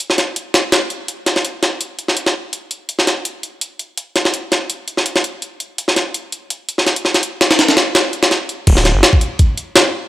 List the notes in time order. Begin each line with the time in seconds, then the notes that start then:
0.00 closed hi-hat
0.10 snare
0.18 snare, closed hi-hat
0.36 closed hi-hat
0.54 snare, closed hi-hat
0.72 snare, closed hi-hat
0.90 closed hi-hat
1.08 closed hi-hat
1.26 snare, closed hi-hat
1.36 snare
1.45 closed hi-hat
1.63 snare, closed hi-hat
1.81 closed hi-hat
1.99 closed hi-hat
2.08 snare
2.17 closed hi-hat
2.26 snare
2.53 closed hi-hat
2.71 closed hi-hat
2.89 closed hi-hat
2.99 snare
3.07 snare, closed hi-hat
3.25 closed hi-hat
3.43 closed hi-hat
3.61 closed hi-hat
3.79 closed hi-hat
3.97 closed hi-hat
4.16 snare, closed hi-hat
4.25 snare
4.34 closed hi-hat
4.52 snare, closed hi-hat
4.70 closed hi-hat
4.88 closed hi-hat
4.97 snare
5.06 closed hi-hat
5.16 snare
5.24 closed hi-hat
5.42 closed hi-hat
5.60 closed hi-hat
5.78 closed hi-hat
5.88 snare
5.96 snare, closed hi-hat
6.14 closed hi-hat
6.32 closed hi-hat
6.50 closed hi-hat
6.69 closed hi-hat
6.78 snare
6.87 snare, closed hi-hat
6.96 closed hi-hat
7.05 snare
7.14 snare, closed hi-hat
7.23 closed hi-hat
7.41 snare, closed hi-hat
7.51 snare, closed hi-hat
7.59 snare, closed hi-hat
7.68 snare, closed hi-hat
7.77 snare, closed hi-hat
7.95 snare, closed hi-hat
8.13 closed hi-hat
8.23 snare, closed hi-hat
8.31 snare, closed hi-hat
8.49 closed hi-hat
8.67 D1, kick, closed hi-hat, crash
8.77 snare
8.85 snare, closed hi-hat
8.95 G1
9.03 snare, closed hi-hat
9.13 kick
9.21 closed hi-hat
9.39 kick, closed hi-hat
9.57 closed hi-hat
9.76 snare, closed hi-hat